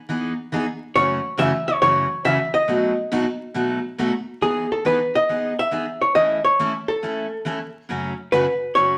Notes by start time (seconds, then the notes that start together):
0.09 E3 B3 D#4 G#4
0.52 E3 B3 D#4 G#4
0.95 F#2 C#3 E3 A3 C#4 F#4 C#5
1.37 F#2 C#3 E3 A3 C#4 F#4 E5
1.68 C#5
1.82 F#2 C#3 E3 A3 C#4 F#4 C#5
2.25 F#2 C#3 E3 A3 C#4 F#4 E5
2.54 D#5
2.68 B2 F#3 A3 D#4 F#4
3.12 B2 F#3 A3 D#4 F#4
3.54 B2 F#3 A3 D#4 F#4
3.98 B2 F#3 A3 D#4 F#4
4.41 E3 B3 D#4 G#4
4.72 A4
4.85 E3 B3 D#4 G#4 B4
5.15 D#5
5.29 E3 B3 D#4 G#4
5.59 E5
5.71 E3 B3 D#4 G#4
6.02 C#5
6.15 E3 A3 C#4 E4 A4 D#5
6.45 C#5
6.59 E3 A3 C#4 E4 A4
6.88 A4
7.03 E3 A3 C#4 E4 A4
7.45 E3 A3 C#4 E4 A4
7.89 F#2 C#3 F#3 A3 C#4 F#4
8.32 F#2 C#3 F#3 A3 C#4 F#4 B4
8.75 F#2 C#3 F#3 A3 C#4 F#4 C#5